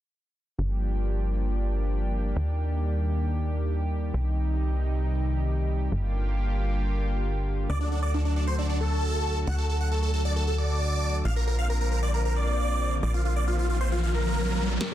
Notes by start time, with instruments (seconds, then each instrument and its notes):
0.59 analog synth bass G1, analog synth pad F3 G3 A#3 D4 G4
2.36 analog synth bass D#2, analog synth pad D#3
4.14 analog synth bass C2, analog synth pad C3 D#4
5.92 analog synth bass G1, analog synth pad D3 A#3 F4 G4
7.69 analog synth bass D2, analog synth pad F#3 A3 F#4 A4, supersaw synth D5
7.81 supersaw synth D4
7.92 supersaw synth D4
8.03 supersaw synth D5
8.14 supersaw synth D4
8.25 supersaw synth D4
8.36 supersaw synth D4
8.47 supersaw synth C5
8.59 supersaw synth D4
8.69 supersaw synth D4
8.81 supersaw synth A4
9.47 analog synth bass D2, supersaw synth F#5
9.58 supersaw synth A4
9.69 supersaw synth A4
9.81 supersaw synth F#5
9.92 supersaw synth A4
10.03 supersaw synth A4
10.14 supersaw synth A4
10.25 supersaw synth D5
10.36 supersaw synth A4
10.47 supersaw synth A4
10.58 supersaw synth D5
11.25 analog synth bass A#1, analog synth pad F3 A#3 C4 F4, supersaw synth F5, riser
11.36 supersaw synth A#4
11.47 supersaw synth A#4
11.59 supersaw synth F5
11.70 supersaw synth A#4
11.81 supersaw synth A#4
11.92 supersaw synth A#4
12.03 supersaw synth D5
12.14 supersaw synth A#4
12.25 supersaw synth A#4
12.36 supersaw synth D5
13.03 analog synth bass A#1, supersaw synth D5
13.14 supersaw synth F4
13.25 supersaw synth F4
13.36 supersaw synth D5
13.48 supersaw synth F4
13.59 supersaw synth F4
13.70 supersaw synth F4
13.81 supersaw synth C5
13.92 supersaw synth F4
14.03 supersaw synth F4
14.14 supersaw synth A#4
14.81 analog synth pad A#2 F3 G3 D4 F4, synth arpeggio sound G4, supersaw synth G4 A#4, grand piano A#4, snare, closed hi-hat